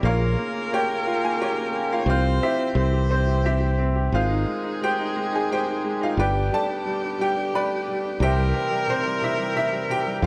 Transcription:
0.03 fingered electric bass A#1, harmonium C#3 A#3 F4, grand piano A#3 F4 A#4 C#5 F5, viola A#4
0.21 grand piano A#3
0.38 grand piano A#3
0.54 grand piano A#3
0.72 grand piano A#3 G4 C#5 G5
0.90 grand piano A#3
1.07 grand piano F4
1.23 grand piano A#3 G#4 G#5
1.41 grand piano A#3 G4 C#5 G5
1.57 grand piano A#3
1.75 grand piano A#3
1.91 grand piano A#3 F4 F5
1.99 viola C#5
2.06 fingered electric bass C2, harmonium F3 C4 G4, grand piano C4 C5 F5, viola C5
2.10 grand piano F4
2.25 grand piano C4
2.41 grand piano C4 E4 G4 C5 E5
2.58 grand piano C4
2.75 fingered electric bass C2, harmonium E3, grand piano C4, viola C5
2.93 grand piano G4
3.10 grand piano C4 C5
3.27 grand piano G4
3.44 grand piano C4 E4 G4 E5
3.60 grand piano G4
3.79 grand piano C4
3.96 grand piano G4
4.12 fingered electric bass G#1, harmonium D#3 G#3, grand piano G#3 F4 G#4 C5 F5, viola G#4
4.29 grand piano D#4
4.46 grand piano G#3
4.63 grand piano D#4
4.81 grand piano G#3 G4 C5 G5
4.99 grand piano D#4
5.16 grand piano G#3
5.32 grand piano D#4 G#4 G#5
5.50 grand piano G#3 G4 C5 G5
5.67 grand piano D#4
5.84 grand piano G#3
6.01 grand piano D#4 F4 F5
6.17 fingered electric bass G1, harmonium D3 B3 G5, grand piano G3 G4 B4 D5 G5, viola G4
6.35 grand piano D4
6.52 grand piano G3 A4 D5 A5
6.69 grand piano D4
6.86 grand piano G3
7.03 grand piano D4
7.19 grand piano G3 G4 G5
7.37 grand piano D4
7.54 grand piano G3 B4 D5 B5
7.71 grand piano D4
7.88 grand piano G3
8.04 grand piano D4
8.20 fingered electric bass C2, grand piano C3 G4 C5 E5 G5, harmonium E3 C4, viola A#4
8.37 grand piano G3
8.54 grand piano C3
8.71 grand piano G3
8.87 grand piano C3 C4 C5
9.05 grand piano G3
9.21 grand piano C3 E4 E5
9.38 grand piano G3
9.55 grand piano C3 E4 E5
9.73 grand piano G3
9.89 grand piano C3 G4 G5
10.06 grand piano G3
10.22 fingered electric bass F2, harmonium C4 F4, grand piano F4, viola G#4

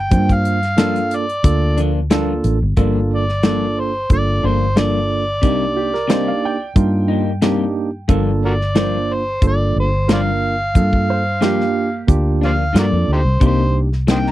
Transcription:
Already playing: fingered electric bass G1
0.00 harmonica G5
0.11 fingered electric bass G2, tine electric piano A#3 D4 F4 C5, kick, closed hi-hat
0.29 harmonica F5, kick, closed hi-hat
0.45 closed hi-hat
0.63 snare, closed hi-hat
0.77 clean electric guitar G2 F3 A#3 D4, tine electric piano A#3 D4 F4 A4, snare, closed hi-hat
0.96 closed hi-hat
1.11 harmonica D5, closed hi-hat
1.29 closed hi-hat
1.44 fingered electric bass D2, tine electric piano A#3 D4 F4 A4, kick, closed hi-hat
1.77 clean electric guitar F3 A#3 D4, closed hi-hat
2.10 clean electric guitar G2 F3 A#3 D4, tine electric piano A#3 D4 F4 A4, snare, closed hi-hat
2.44 fingered electric bass A1, closed hi-hat
2.62 fingered electric bass G1
2.77 fingered electric bass G1, clean electric guitar G2 F3 A#3 D4, tine electric piano A#3 D4 F4 A4, kick, closed hi-hat
3.13 harmonica D5
3.29 snare
3.43 clean electric guitar G2 F3 A#3 D4, tine electric piano A#3 D4 F4 A4, snare, closed hi-hat
3.80 harmonica C5
4.10 fingered electric bass G1, tine electric piano A#3 D4 F4 A4, harmonica D5, kick, closed hi-hat
4.43 fingered electric bass G1, clean electric guitar F3 A#3 D4, harmonica C5
4.76 clean electric guitar G2 F3 A#3 D4, tine electric piano A#3 D4 F4 A4, harmonica D5, snare, closed hi-hat
5.42 fingered electric bass C2, clean electric guitar C3 G3 A#3 D#4, tine electric piano A#3 D4 D#4 G4, kick, closed hi-hat
5.76 upright piano G4
5.94 upright piano A#4, snare
6.08 clean electric guitar C3 G3 A#3 D#4, tine electric piano A#3 D4 D#4 G4, upright piano C5, snare, closed hi-hat
6.28 upright piano F5
6.45 upright piano G5
6.75 fingered electric bass G2, tine electric piano A#3 D4 D#4 F4, kick, closed hi-hat
7.08 clean electric guitar G3 A#3 D#4
7.42 clean electric guitar C3 G3 A#3 D#4, tine electric piano A#3 D4 D#4 G4, snare, closed hi-hat
8.08 fingered electric bass G1, clean electric guitar G2 F3 A#3 D4, tine electric piano A#3 D4 F4 A4, kick, closed hi-hat
8.45 harmonica F#4 A#4 D5
8.61 snare
8.75 clean electric guitar G2 F3 A#3 D4, tine electric piano A#3 D4 F4 C5, snare, closed hi-hat
9.13 harmonica C5
9.42 fingered electric bass G1, tine electric piano A#3 D4 F4 A4, kick, closed hi-hat
9.47 harmonica D5
9.76 fingered electric bass G1, harmonica C5
10.08 clean electric guitar G2 F3 A#3 D4, tine electric piano A#3 D4 F4 A#4, snare, closed hi-hat
10.13 harmonica C5 D5 F5
10.75 fingered electric bass G2, tine electric piano A#3 D4 F4 A4, kick, closed hi-hat
10.93 kick
11.10 upright piano C5
11.41 clean electric guitar G2 F3 A#3 D4, tine electric piano A#3 D4 F4 G4, upright piano A#3 G4, snare, closed hi-hat
11.61 snare
12.07 fingered electric bass D2, tine electric piano A#3 D4 F4 G4, kick, closed hi-hat
12.41 clean electric guitar F3 A#3 D4, harmonica C5 D5 F5, snare
12.73 clean electric guitar G2 F3 A#3 D4, fingered electric bass G2, tine electric piano A#3 D4 F4 A4, snare, closed hi-hat
12.78 harmonica F#4 A#4 D5
12.92 fingered electric bass F2
13.08 fingered electric bass D2
13.12 harmonica D#4 G4 C5
13.25 fingered electric bass C2
13.40 fingered electric bass C2, clean electric guitar C3 G3 A#3 D#4, tine electric piano A#3 D4 D#4 G4, kick, closed hi-hat
13.47 harmonica C5
13.93 snare
14.07 clean electric guitar C3 G3 A#3 D#4, tine electric piano A#3 D4 D#4 A#4, harmonica C5 D#5 G5, snare, closed hi-hat
14.26 snare

